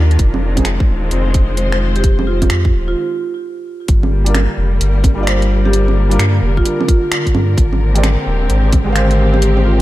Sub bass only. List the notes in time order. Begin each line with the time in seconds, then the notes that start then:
Already playing: D#2
0.19 F1
0.88 D#1
1.11 F1
2.50 F2
2.73 D#1
3.88 G1
4.58 F1
4.81 G1
6.19 G2
6.42 F1
7.34 G2
7.57 G#1
8.27 D#1
8.50 G#1